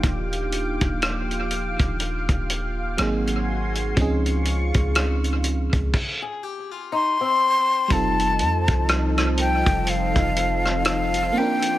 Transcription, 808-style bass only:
X:1
M:4/4
L:1/16
Q:"Swing 16ths" 1/4=61
K:Fmix
V:1 name="808-style bass" clef=bass
E,,,3 E,,,4 E,,,2 E,,,3 _A,,,4 | _D,,3 D,,4 D,, z8 | F,,,2 F,, C,,4 F,,,2 F,,,4- F,,, z2 |]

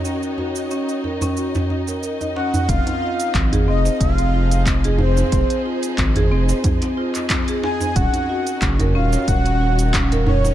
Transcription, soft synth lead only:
X:1
M:4/4
L:1/8
Q:"Swing 16ths" 1/4=91
K:Fphr
V:1 name="Soft synth lead"
z6 z g | f2 z e f2 z c- | c z6 a | g2 z f g2 z d |]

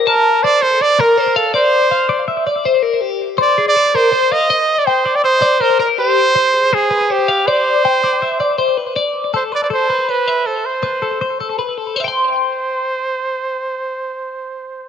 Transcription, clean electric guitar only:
X:1
M:4/4
L:1/8
Q:1/4=161
K:Am
V:1 name="Clean electric guitar"
a2 c A c _B c f | d2 f d e d c _B | G2 c _A c _B c f | _e2 g d e d c _B |
G2 c _A c B c f | d2 g d e d c B | d2 A B A B c e | c2 B A c A B A |
[cegc']8- | [cegc']8 |]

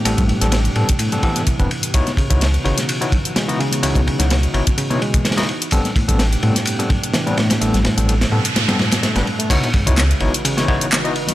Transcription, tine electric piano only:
X:1
M:4/4
L:1/16
Q:"Swing 16ths" 1/4=127
K:Alyd
V:1 name="Tine electric piano"
[=G,B,=C=DA] z2 [G,B,CDA] z2 [G,B,CDA] z2 [G,B,CDA] [G,B,CDA] z2 [G,B,CDB] z2 | [B,DEFc] z2 [B,DEFc] z2 [B,DEFc] z2 [B,DEFc] z3 [B,DEFd] z2 | [B,DEFc] z2 [B,DEFc] z2 [B,DEFc] z2 [B,DEFc] z3 [B,DEFd] z2 | [=G,B,=C=DA] z2 [G,B,CDA] z2 [G,B,CDA] z2 [G,B,CDA] z3 [G,B,CDB] z2 |
[=G,B,=C=DA] z2 [G,B,CDA] z2 [G,B,CDA] z2 [G,B,CDA] z3 [G,B,CDB] z2 | [B,DEFc] z2 [B,DEFc] z2 [B,DEFc] z2 [B,DEFc] [B,DEFc] z2 [B,DEFd] z2 |]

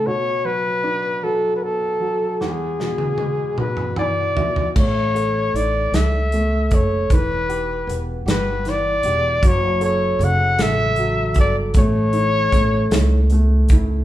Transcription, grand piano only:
X:1
M:6/8
L:1/8
Q:3/8=51
K:Emix
V:1 name="Grand piano"
B,, F, D F, B, F, | E,, B,, G, B,, [E,g] [B,,e] | [K:Amix] A, A E A A, A | E, G B, G E, G |
F, A C, A F, A | A, E A, E A, E |]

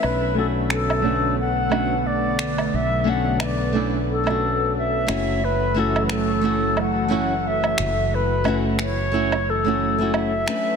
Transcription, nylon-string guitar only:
X:1
M:4/4
L:1/16
Q:"Swing 16ths" 1/4=89
K:Bm
V:1 name="Nylon-string guitar"
[A,CDB]2 [A,CDF]4 [A,CDF]2 z2 [A,CDF] z4 z | z2 [A,CDF]2 z2 [A,CDE] z2 [A,CDF]4- [A,CDF] [A,CEF]2 | z2 [A,CEF]4 [A,CEF]2 z2 [A,CEF] z4 z | z2 [A,CEF]2 z2 [A,CEF] z2 [A,CEF]2 [A,CEF]2 z [A,CDB]2 |]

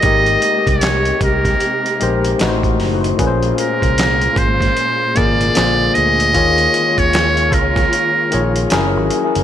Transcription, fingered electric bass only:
X:1
M:4/4
L:1/16
Q:"Swing 16ths" 1/4=76
K:Bbdor
V:1 name="Fingered electric bass" clef=bass
A,,,2 z C,,3 C,,2 z2 B,,,2 =A,,,2 ^F,,,2 | B,,,2 z C,,3 A,,,2 z2 A,,,2 B,,,2 =D,,2 | E,,2 z E,,3 D,,2 z2 B,,,2 _G,,, A,,, z G,,, |]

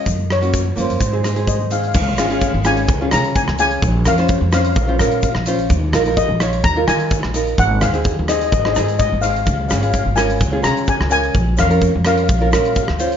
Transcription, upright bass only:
X:1
M:4/4
L:1/16
Q:1/4=128
K:Db
V:1 name="Upright bass" clef=bass
G,,6 G,, G,, A,,8 | D,,2 A,,,3 A,,,3 D,,2 D,3 D,,3 | B,,,2 F,,3 F,,3 B,,,2 B,,3 B,,,3 | E,,2 B,,,3 B,,,3 E,,2 E,3 B,,,3 |
A,,,2 E,,3 E,,3 A,,,2 A,,3 A,,,3 | D,,2 A,,,3 A,,,3 D,,2 D,3 D,,3 | B,,,2 F,,3 F,,3 B,,,2 B,,3 =D,,3 |]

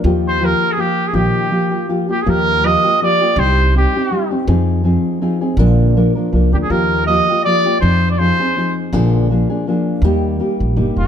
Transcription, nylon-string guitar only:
X:1
M:3/4
L:1/8
Q:"Swing" 1/4=163
K:Eb
V:1 name="Nylon-string guitar"
[E,F,B,FG]2 [F,B,FG]2 [F,B,FG]2 | [E,F,B,FG]2 [F,B,FG] [B,FG] [F,B,FG] [B,FG] | [E,F,B,FG]2 [F,B,FG] [B,FG] [F,B,FG] [B,FG] | [C,G,CEG]2 [G,CEG] [CEG] [G,CEG] [CEG] |
[F,CEA]2 [F,CEA]2 [F,CEA] [CEA] | [B,,D,F,B,DB]2 [F,B,DB] [F,B,DB] [F,B,DB] [F,B,DB] | [E,F,B,FG]2 [F,B,FG] [B,FG] [F,B,FG] [B,FG] | [F,CEA]2 [F,CEA] [CEA] [F,CEA]2 |
[B,,D,F,B,DA]2 [F,B,DA] [F,B,DA] [F,B,DA]2 | [E,G,B,EG]2 [G,B,EG]2 [G,B,EG]2 |]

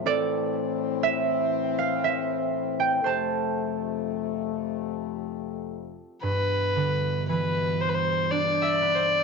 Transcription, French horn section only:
X:1
M:3/4
L:1/8
Q:1/4=59
K:Gmix
V:1 name="French horn section" clef=bass
[A,,E,C]6 | [F,,C,A,]6 | [G,,B,,E,]6 |]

